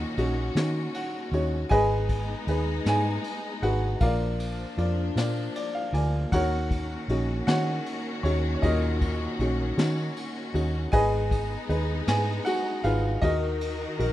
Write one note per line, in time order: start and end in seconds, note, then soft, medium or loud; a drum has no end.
0.00 1.67 A#2 medium
0.00 1.68 D#3 medium
0.00 1.67 A#3 medium
0.00 0.18 C#4 medium
0.00 1.68 C#4 medium
0.00 0.18 D#4 medium
0.00 0.18 F#4 medium
0.00 1.67 F#4 medium
0.00 1.30 A#4 medium
0.00 1.34 C#5 medium
0.00 1.29 D#5 medium
0.00 0.95 F#5 loud
0.17 0.49 A#1 medium
0.17 0.54 C#4 medium
0.17 0.55 D#4 soft
0.17 0.55 F#4 medium
0.17 ride soft
0.55 0.87 D#3 medium
0.55 1.30 C#4 soft
0.55 1.30 D#4 soft
0.55 1.31 F#4 medium
0.55 snare medium
0.55 ride medium
0.94 1.30 F#5 medium
0.94 ride medium
1.32 1.63 D#2 medium
1.32 1.70 C#4 soft
1.32 1.70 D#4 soft
1.32 1.70 F#4 medium
1.32 1.69 C#5 medium
1.32 ride soft
1.69 2.34 G#1 loud
1.69 3.98 G#3 medium
1.69 3.97 G#3 medium
1.69 3.99 B3 medium
1.69 3.98 D#4 medium
1.69 2.44 G#4 medium
1.69 2.44 B4 medium
1.69 2.44 D#5 medium
1.69 2.43 G#5 loud
1.69 kick medium
1.69 ride medium
2.09 kick medium
2.09 ride medium
2.47 2.79 D#2 medium
2.47 2.84 D#4 medium
2.47 2.85 G#4 soft
2.47 2.86 B4 medium
2.47 ride medium
2.86 3.17 G#2 medium
2.86 3.60 D#4 soft
2.86 3.61 G#4 soft
2.86 3.61 B4 medium
2.86 3.59 G#5 loud
2.86 snare medium
2.86 ride medium
3.24 ride medium
3.62 3.94 G#1 loud
3.62 3.99 D#4 soft
3.62 3.99 F#4 medium
3.62 4.00 G#4 soft
3.62 4.00 B4 soft
3.62 3.98 F#5 medium
3.62 ride soft
3.99 4.64 A#1 loud
3.99 6.29 F3 medium
3.99 10.88 A#3 medium
3.99 6.28 A#3 medium
3.99 6.29 D4 medium
3.99 4.76 F4 medium
3.99 4.76 A#4 medium
3.99 4.77 D5 medium
3.99 5.73 F5 medium
3.99 kick medium
3.99 ride medium
4.40 ride medium
4.78 5.09 F2 medium
4.78 5.15 F4 medium
4.78 5.15 A#4 soft
4.78 5.16 D5 medium
4.78 ride soft
5.16 5.47 A#2 medium
5.16 5.91 F4 soft
5.16 5.91 A#4 soft
5.16 5.54 D5 medium
5.16 snare medium
5.16 ride medium
5.55 5.73 D5 medium
5.55 ride medium
5.75 5.92 F5 medium
5.93 6.24 D2 medium
5.93 6.31 F4 soft
5.93 6.31 A#4 soft
5.93 6.31 D5 soft
5.93 6.29 G#5 medium
5.93 ride medium
6.30 6.95 D#2 loud
6.30 10.89 D#3 medium
6.30 8.59 D#3 medium
6.30 10.88 C#4 medium
6.30 10.88 F#4 medium
6.30 7.06 A#4 medium
6.30 7.06 C#5 medium
6.30 7.05 F#5 loud
6.30 kick medium
6.30 ride medium
6.34 7.06 F#4 medium
6.71 kick medium
6.71 ride medium
7.08 7.40 A#1 loud
7.08 7.46 C#4 medium
7.08 7.47 D#4 soft
7.08 7.47 F#4 medium
7.08 ride medium
7.47 7.79 D#3 medium
7.47 8.22 C#4 medium
7.47 8.22 D#4 soft
7.47 8.23 F#4 medium
7.47 8.21 C#5 medium
7.47 8.26 F#5 medium
7.47 snare medium
7.47 ride medium
7.86 ride medium
8.23 8.55 D#2 medium
8.23 8.99 C#4 soft
8.23 8.62 D#4 soft
8.23 8.63 F#4 soft
8.23 8.53 C#5 medium
8.23 ride soft
8.54 8.62 C#5 medium
8.62 9.26 D#2 loud
8.62 10.89 A#2 medium
8.62 9.39 D#4 medium
8.62 9.39 F#4 medium
8.62 10.52 A#4 medium
8.62 10.50 D#5 medium
8.62 kick medium
8.62 ride medium
9.01 kick medium
9.01 ride medium
9.39 9.71 A#1 loud
9.39 9.76 C#4 medium
9.39 9.76 D#4 soft
9.39 9.76 F#4 medium
9.39 ride soft
9.77 10.09 D#3 medium
9.77 10.52 C#4 soft
9.77 10.52 D#4 soft
9.77 10.52 F#4 medium
9.77 snare loud
9.77 ride medium
10.17 ride medium
10.53 10.86 D#2 medium
10.53 10.91 C#4 soft
10.53 10.91 D#4 soft
10.53 10.92 F#4 medium
10.53 ride soft
10.92 11.55 G#1 loud
10.92 13.20 G#3 medium
10.92 13.18 G#3 medium
10.92 13.20 B3 medium
10.92 13.20 D#4 medium
10.92 11.66 G#4 medium
10.92 11.66 B4 medium
10.92 11.66 D#5 medium
10.92 11.65 G#5 loud
10.92 kick loud
10.92 ride medium
11.31 kick medium
11.31 ride medium
11.69 12.01 D#2 medium
11.69 12.06 D#4 medium
11.69 12.06 G#4 soft
11.69 12.07 B4 medium
11.69 ride medium
12.07 12.39 G#2 medium
12.07 12.82 D#4 soft
12.07 12.82 G#4 soft
12.07 12.82 B4 soft
12.07 12.47 G#5 loud
12.07 snare medium
12.07 ride medium
12.45 12.82 F#4 medium
12.45 12.85 F#5 medium
12.45 ride medium
12.84 13.16 G#1 loud
12.84 13.21 D#4 soft
12.84 13.21 F4 medium
12.84 13.21 G#4 soft
12.84 13.21 B4 soft
12.84 13.20 F5 medium
12.84 ride medium
13.22 13.85 D#2 medium
13.22 14.13 D#3 medium
13.22 14.13 D#4 medium
13.22 13.97 D#4 medium
13.22 14.13 F#4 medium
13.22 13.97 F#4 medium
13.22 14.13 A#4 medium
13.22 13.98 A#4 medium
13.22 14.13 D#5 medium
13.22 kick medium
13.22 ride medium
13.61 ride medium
13.98 14.13 A#1 medium
13.98 14.13 D#4 soft
13.98 14.13 F#4 soft
13.98 14.13 A#4 medium
13.98 ride medium